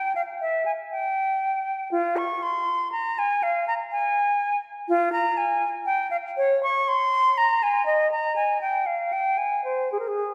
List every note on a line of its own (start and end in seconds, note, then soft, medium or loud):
0.00 0.15 G5 medium
0.15 0.21 F5 medium
0.41 0.65 E5 medium
0.66 0.72 G#5 medium
0.91 1.91 G5 medium
1.92 2.18 F4 medium
2.17 2.44 C#6 medium
2.43 2.91 C6 medium
2.92 3.20 A#5 medium
3.19 3.45 G#5 medium
3.43 3.67 F5 medium
3.68 3.74 A#5 medium
3.92 4.57 G#5 medium
4.89 5.12 F4 medium
5.12 5.39 A#5 medium
5.37 5.70 G#5 medium
5.86 6.10 G5 medium
6.11 6.17 F5 medium
6.37 6.63 C#5 medium
6.63 6.90 C#6 medium
6.88 7.39 C6 medium
7.38 7.65 A#5 medium
7.63 7.85 G#5 medium
7.86 8.11 D#5 medium
8.11 8.35 A#5 medium
8.36 8.61 G#5 medium
8.61 8.88 G5 medium
8.86 9.14 F5 medium
9.13 9.39 G5 medium
9.38 9.64 G#5 medium
9.64 9.92 C5 soft
9.92 9.98 G#4 soft
9.99 10.09 A#4 soft
10.08 10.34 G#4 soft